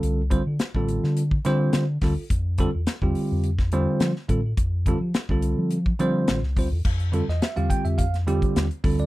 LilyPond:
<<
  \new Staff \with { instrumentName = "Tine electric piano" } { \time 4/4 \key f \major \tempo 4 = 106 << { r1 | r1 | r1 | r8. ees''16 e''16 f''16 g''16 e''16 f''8 r4 r16 d''16 | } \\ { <d g c' f' a'>16 r16 <d g c' f' c''>16 <f' a'>16 <f' c''>16 <d g c' f' a'>8. r8 <d g c' f' c''>8. r16 <d g c' f' a'>16 <f' a'>16 | r8 <d g c' f' a'>16 <f' a'>16 <f' a'>16 <d g c' f' g'>8. r8 <d g c' f' c''>8. r16 <d g c' f' a'>16 <f' a'>16 | r8 <d g c' f' a'>16 <f' g'>16 <f' a'>16 <d g c' f' a'>8. r8 <d g c' f' c''>8. r16 <d g c' f' c''>16 r16 | r8 <d g c' f' a'>16 <f' c''>16 <f' c''>16 <d g c' f' g'>8. r8 <d g c' f' g'>8. r16 <d g c' f' a'>8 | } >> }
  \new Staff \with { instrumentName = "Fingered electric bass" } { \clef bass \time 4/4 \key f \major c,8. d16 r16 a,,8 d8. d8 d8 d,16 r16 | f,8. e,16 r16 e,16 r16 f,8. e,16 r16 f16 r16 a,8 | f,8. f16 r16 c,8 f8. f8 a,,16 c,16 d,16 e,16 | f,8. e,16 r16 e,16 r16 f,8. e,16 r16 ees,16 r16 d,8 | }
  \new DrumStaff \with { instrumentName = "Drums" } \drummode { \time 4/4 hh8 <hh bd>8 <hh sn>16 bd16 hh16 sn16 hh16 bd16 <hh sn>8 <hh sn>8 <hho bd sn>8 | <hh bd>8 <hh bd>8 <hh sn>16 bd16 hho8 hh16 <bd sn>16 hh8 <hh sn>16 sn16 <hh bd>8 | <hh bd>8 <hh bd>8 <hh sn>16 bd16 hh8 hh16 bd16 hh8 <hh sn>16 sn16 <hho bd>8 | <cymc bd>16 hh16 hh16 sn16 <hh sn>16 hh16 <hh bd>16 hh16 <hh bd>16 <hh sn>16 hh16 <hh bd>16 <hh sn>16 hh16 <hho bd>16 hh16 | }
>>